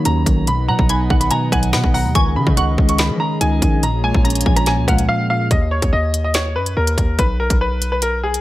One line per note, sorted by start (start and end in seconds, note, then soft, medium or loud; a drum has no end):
0.00 0.26 D#3 loud
0.00 0.46 D#3 medium
0.00 0.47 F#3 medium
0.00 0.49 A#3 medium
0.00 0.26 D#4 loud
0.00 0.46 D#4 medium
0.00 0.46 F#4 medium
0.00 0.44 C#5 loud
0.05 0.25 D#2 loud
0.05 0.47 C#4 medium
0.05 0.45 A#5 medium
0.05 closed hi-hat medium
0.26 0.70 B1 loud
0.26 0.47 D#3 medium
0.26 kick medium
0.26 closed hi-hat medium
0.47 1.30 B2 medium
0.47 2.13 B3 medium
0.47 2.13 B4 medium
0.47 3.80 D#5 medium
0.47 2.13 F#5 medium
0.47 0.64 B5 medium
0.47 closed hi-hat medium
0.68 0.78 B2 loud
0.68 1.51 F#3 medium
0.68 0.88 F#5 medium
0.68 0.85 A#5 medium
0.79 1.09 B1 loud
0.79 kick loud
0.89 1.94 D#4 loud
0.89 1.09 G#5 medium
0.89 1.19 B5 medium
0.89 closed hi-hat medium
1.10 1.30 B1 loud
1.10 2.14 D#3 medium
1.10 1.30 F#5 medium
1.10 kick loud
1.21 1.29 B5 medium
1.21 closed hi-hat medium
1.31 1.93 B2 medium
1.31 1.51 G#5 medium
1.31 1.48 A#5 medium
1.31 closed hi-hat medium
1.52 1.75 B1 loud
1.52 2.15 F#3 medium
1.52 1.72 F#5 medium
1.52 1.69 G#5 medium
1.52 kick loud
1.52 cross-stick medium
1.52 closed hi-hat medium
1.63 closed hi-hat medium
1.73 1.83 B2 loud
1.73 2.15 B3 medium
1.73 1.90 F#5 medium
1.73 1.93 B5 loud
1.73 snare loud
1.84 2.06 B1 loud
1.84 kick loud
1.94 2.15 B2 medium
1.94 2.11 F#5 medium
1.94 2.14 A#5 medium
1.94 open hi-hat medium
2.05 2.15 D#2 loud
2.15 2.38 C#2 loud
2.15 3.81 C#3 medium
2.15 2.98 D#3 loud
2.15 3.81 C#4 medium
2.15 5.47 G#4 medium
2.15 2.55 G#5 loud
2.15 2.32 C#6 medium
2.15 kick loud
2.15 closed hi-hat medium
2.36 2.46 C#3 loud
2.36 3.19 C#4 medium
2.36 2.53 B5 medium
2.47 2.57 C#3 loud
2.47 kick loud
2.57 2.77 C#2 loud
2.57 3.62 D#5 medium
2.57 3.37 F#5 loud
2.57 2.87 C#6 medium
2.57 closed hi-hat medium
2.78 3.11 C#2 loud
2.78 3.83 G#3 medium
2.78 kick loud
2.89 2.97 C#6 medium
2.89 closed hi-hat medium
2.98 3.61 D#3 medium
2.98 3.16 B5 medium
2.98 snare loud
2.98 closed hi-hat medium
3.10 3.20 F3 loud
3.20 3.83 C#4 medium
3.20 3.37 A#5 medium
3.41 3.61 C#2 loud
3.41 3.83 D#4 medium
3.41 3.80 G#5 medium
3.41 closed hi-hat medium
3.62 4.12 A#1 loud
3.62 3.83 D#3 medium
3.62 kick loud
3.62 closed hi-hat medium
3.83 4.66 A#2 medium
3.83 5.49 A#3 medium
3.83 5.49 F4 medium
3.83 5.49 C#5 medium
3.83 4.00 A#5 medium
3.83 closed hi-hat medium
4.04 4.87 G#3 medium
4.04 4.24 G#5 medium
4.04 4.21 G#5 medium
4.14 4.45 A#1 loud
4.14 kick loud
4.25 5.30 C#4 loud
4.25 4.54 A#5 medium
4.25 4.45 A#5 medium
4.25 closed hi-hat medium
4.30 closed hi-hat medium
4.35 closed hi-hat medium
4.41 closed hi-hat medium
4.46 4.79 A#1 loud
4.46 5.51 F3 medium
4.46 4.66 G#5 medium
4.46 kick loud
4.56 4.65 A#5 medium
4.56 cross-stick medium
4.56 closed hi-hat medium
4.66 5.28 A#2 loud
4.66 4.84 G#5 medium
4.66 4.87 A#5 medium
4.66 snare medium
4.66 closed hi-hat medium
4.77 4.87 C#2 loud
4.88 5.08 C#2 loud
4.88 5.51 G#3 medium
4.88 5.47 F5 medium
4.88 5.04 F#5 medium
4.88 kick medium
4.88 cross-stick medium
4.88 closed hi-hat medium
4.98 closed hi-hat medium
5.09 5.51 A#3 medium
5.09 5.25 F5 medium
5.30 5.51 A#2 medium
5.30 5.47 F5 medium
5.51 5.81 D#2 loud
5.51 5.67 D#5 medium
5.51 kick loud
5.51 closed hi-hat medium
5.71 5.88 C#5 medium
5.82 5.92 D#2 loud
5.82 kick loud
5.82 closed hi-hat medium
5.93 6.57 D#2 loud
5.93 6.22 D#5 medium
6.14 closed hi-hat medium
6.24 6.33 D#5 medium
6.34 6.51 C#5 medium
6.34 snare loud
6.34 closed hi-hat medium
6.56 6.76 F#2 loud
6.56 6.72 B4 medium
6.66 closed hi-hat medium
6.77 6.97 D#2 loud
6.77 7.16 A#4 medium
6.87 closed hi-hat medium
6.98 7.18 D#2 loud
6.98 kick medium
6.98 closed hi-hat medium
7.19 7.49 B1 loud
7.19 7.35 B4 medium
7.19 kick loud
7.19 closed hi-hat medium
7.40 7.56 A#4 medium
7.50 8.41 B1 loud
7.50 kick loud
7.50 closed hi-hat medium
7.61 7.90 B4 medium
7.82 closed hi-hat medium
7.92 8.00 B4 medium
8.02 8.19 A#4 medium
8.02 closed hi-hat medium
8.23 8.40 G#4 medium
8.34 closed hi-hat medium